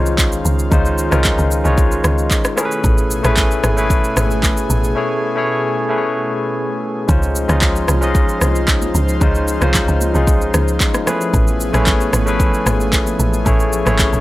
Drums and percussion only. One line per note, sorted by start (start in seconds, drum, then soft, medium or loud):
0.06 shaker medium
0.18 kick medium
0.18 clap medium
0.18 shaker medium
0.32 shaker medium
0.45 shaker loud
0.59 shaker medium
0.72 kick loud
0.72 shaker medium
0.85 shaker medium
0.98 shaker medium
1.12 cross-stick loud
1.12 shaker medium
1.24 kick loud
1.24 clap loud
1.24 shaker medium
1.39 shaker medium
1.51 shaker medium
1.65 shaker medium
1.78 kick loud
1.78 shaker medium
1.92 shaker medium
2.04 cross-stick loud
2.04 shaker medium
2.18 shaker medium
2.31 kick medium
2.31 clap medium
2.31 shaker medium
2.45 cross-stick loud
2.45 shaker medium
2.58 cross-stick loud
2.58 shaker loud
2.71 shaker medium
2.84 kick loud
2.84 shaker medium
2.98 shaker medium
3.11 shaker medium
3.24 cross-stick loud
3.24 shaker medium
3.37 kick medium
3.37 clap loud
3.37 shaker medium
3.51 shaker medium
3.64 cross-stick loud
3.64 shaker medium
3.78 shaker medium
3.90 kick loud
3.90 shaker medium
4.04 shaker medium
4.17 cross-stick loud
4.17 shaker medium
4.31 shaker medium
4.43 kick loud
4.43 clap medium
4.43 shaker medium
4.57 shaker medium
4.70 shaker loud
4.84 shaker medium
7.09 kick loud
7.09 low conga medium
7.09 shaker medium
7.23 shaker medium
7.35 shaker medium
7.49 cross-stick medium
7.49 high conga medium
7.49 shaker medium
7.62 kick loud
7.62 clap loud
7.62 low conga medium
7.62 shaker medium
7.76 shaker soft
7.88 cross-stick loud
7.88 high conga medium
7.88 shaker medium
8.02 shaker medium
8.15 kick loud
8.15 shaker medium
8.29 shaker soft
8.41 cross-stick loud
8.41 high conga medium
8.41 shaker loud
8.56 shaker medium
8.68 kick loud
8.68 clap medium
8.68 shaker medium
8.82 high conga medium
8.82 shaker medium
8.95 high conga medium
8.95 low conga medium
8.95 shaker loud
9.09 shaker medium
9.21 kick loud
9.21 low conga medium
9.21 shaker medium
9.35 shaker medium
9.48 shaker medium
9.62 cross-stick medium
9.62 high conga medium
9.62 shaker medium
9.74 kick loud
9.74 clap loud
9.74 low conga medium
9.74 shaker medium
9.88 shaker medium
10.01 high conga medium
10.01 shaker medium
10.15 shaker medium
10.27 kick loud
10.27 shaker medium
10.41 shaker medium
10.54 cross-stick loud
10.54 high conga medium
10.54 shaker loud
10.68 shaker medium
10.80 kick loud
10.80 clap medium
10.80 shaker medium
10.94 cross-stick medium
10.94 high conga medium
10.94 shaker medium
11.07 cross-stick loud
11.07 high conga medium
11.07 low conga medium
11.07 shaker loud
11.21 shaker medium
11.34 kick loud
11.34 low conga medium
11.34 shaker medium
11.48 shaker medium
11.60 shaker medium
11.74 cross-stick medium
11.74 high conga medium
11.74 shaker medium
11.86 kick loud
11.86 clap loud
11.86 low conga medium
11.86 shaker medium
12.01 shaker medium
12.13 cross-stick loud
12.13 high conga medium
12.13 shaker loud
12.27 shaker medium
12.40 kick loud
12.40 shaker medium
12.54 shaker medium
12.66 cross-stick loud
12.66 high conga medium
12.66 shaker medium
12.80 shaker medium
12.93 kick loud
12.93 clap medium
12.93 shaker medium
13.07 high conga medium
13.07 shaker medium
13.20 high conga medium
13.20 low conga medium
13.20 shaker loud
13.34 shaker medium
13.46 kick loud
13.46 low conga medium
13.46 shaker medium
13.60 shaker medium
13.73 shaker medium
13.86 cross-stick loud
13.86 high conga medium
13.86 shaker medium
13.99 kick loud
13.99 clap loud
13.99 low conga medium
13.99 shaker medium
14.13 shaker medium